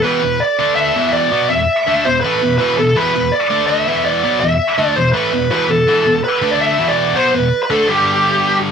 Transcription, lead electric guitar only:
0, 0, Header, 1, 2, 480
1, 0, Start_track
1, 0, Key_signature, 1, "minor"
1, 0, Tempo, 364520
1, 53, Time_signature, 4, 2, 24, 8
1, 11477, End_track
2, 0, Start_track
2, 0, Title_t, "Lead electric guitar"
2, 0, Program_c, 0, 29
2, 26, Note_on_c, 0, 71, 105
2, 529, Note_on_c, 0, 74, 101
2, 534, Note_off_c, 0, 71, 0
2, 988, Note_off_c, 0, 74, 0
2, 993, Note_on_c, 0, 76, 108
2, 1481, Note_off_c, 0, 76, 0
2, 1487, Note_on_c, 0, 74, 103
2, 1968, Note_off_c, 0, 74, 0
2, 1973, Note_on_c, 0, 76, 102
2, 2699, Note_on_c, 0, 72, 86
2, 2713, Note_off_c, 0, 76, 0
2, 2900, Note_off_c, 0, 72, 0
2, 2905, Note_on_c, 0, 71, 94
2, 3384, Note_off_c, 0, 71, 0
2, 3399, Note_on_c, 0, 71, 98
2, 3652, Note_off_c, 0, 71, 0
2, 3661, Note_on_c, 0, 69, 80
2, 3906, Note_off_c, 0, 69, 0
2, 3906, Note_on_c, 0, 71, 97
2, 4371, Note_on_c, 0, 74, 92
2, 4378, Note_off_c, 0, 71, 0
2, 4827, Note_off_c, 0, 74, 0
2, 4832, Note_on_c, 0, 76, 87
2, 5329, Note_off_c, 0, 76, 0
2, 5334, Note_on_c, 0, 74, 98
2, 5790, Note_off_c, 0, 74, 0
2, 5795, Note_on_c, 0, 76, 97
2, 6388, Note_off_c, 0, 76, 0
2, 6388, Note_on_c, 0, 74, 97
2, 6528, Note_on_c, 0, 72, 86
2, 6545, Note_off_c, 0, 74, 0
2, 6744, Note_off_c, 0, 72, 0
2, 6750, Note_on_c, 0, 71, 85
2, 7246, Note_off_c, 0, 71, 0
2, 7261, Note_on_c, 0, 71, 96
2, 7503, Note_off_c, 0, 71, 0
2, 7503, Note_on_c, 0, 69, 87
2, 8212, Note_off_c, 0, 69, 0
2, 8218, Note_on_c, 0, 71, 85
2, 8575, Note_on_c, 0, 74, 85
2, 8585, Note_off_c, 0, 71, 0
2, 8696, Note_off_c, 0, 74, 0
2, 8707, Note_on_c, 0, 76, 96
2, 9061, Note_off_c, 0, 76, 0
2, 9067, Note_on_c, 0, 74, 87
2, 9425, Note_on_c, 0, 72, 87
2, 9429, Note_off_c, 0, 74, 0
2, 9667, Note_off_c, 0, 72, 0
2, 9667, Note_on_c, 0, 71, 91
2, 10028, Note_off_c, 0, 71, 0
2, 10045, Note_on_c, 0, 71, 87
2, 10148, Note_off_c, 0, 71, 0
2, 10153, Note_on_c, 0, 69, 85
2, 10376, Note_on_c, 0, 67, 80
2, 10388, Note_off_c, 0, 69, 0
2, 11279, Note_off_c, 0, 67, 0
2, 11477, End_track
0, 0, End_of_file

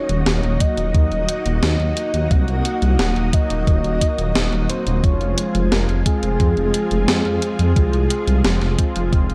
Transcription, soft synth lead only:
0, 0, Header, 1, 2, 480
1, 0, Start_track
1, 0, Tempo, 681818
1, 1625, Time_signature, 4, 2, 24, 8
1, 6579, End_track
2, 0, Start_track
2, 0, Title_t, "Soft synth lead"
2, 0, Program_c, 0, 80
2, 0, Note_on_c, 0, 73, 111
2, 426, Note_on_c, 0, 75, 113
2, 437, Note_off_c, 0, 73, 0
2, 1143, Note_off_c, 0, 75, 0
2, 1147, Note_on_c, 0, 75, 109
2, 1627, Note_on_c, 0, 78, 121
2, 1637, Note_off_c, 0, 75, 0
2, 2346, Note_on_c, 0, 75, 123
2, 2357, Note_off_c, 0, 78, 0
2, 3302, Note_off_c, 0, 75, 0
2, 3306, Note_on_c, 0, 72, 99
2, 3546, Note_on_c, 0, 73, 104
2, 3557, Note_off_c, 0, 72, 0
2, 3785, Note_on_c, 0, 72, 101
2, 3795, Note_off_c, 0, 73, 0
2, 4021, Note_off_c, 0, 72, 0
2, 4025, Note_on_c, 0, 70, 92
2, 4124, Note_off_c, 0, 70, 0
2, 4266, Note_on_c, 0, 68, 98
2, 6579, Note_off_c, 0, 68, 0
2, 6579, End_track
0, 0, End_of_file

